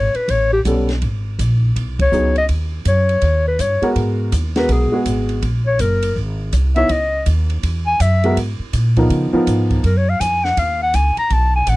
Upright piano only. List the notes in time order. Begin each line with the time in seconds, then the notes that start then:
0.65 G3 B3 C#4 A4
2.12 F#3 B3 D#4 G#4
3.82 G#3 B3 F#4 A#4
4.56 G#3 B3 F#4 A#4
4.92 G#3 B3 F#4 G#4
6.76 B3 D#4 E4 C#5
8.24 G#3 B3 F#4 A#4
8.97 F3 B3 D#4 A#4
9.33 F3 B3 D#4 A#4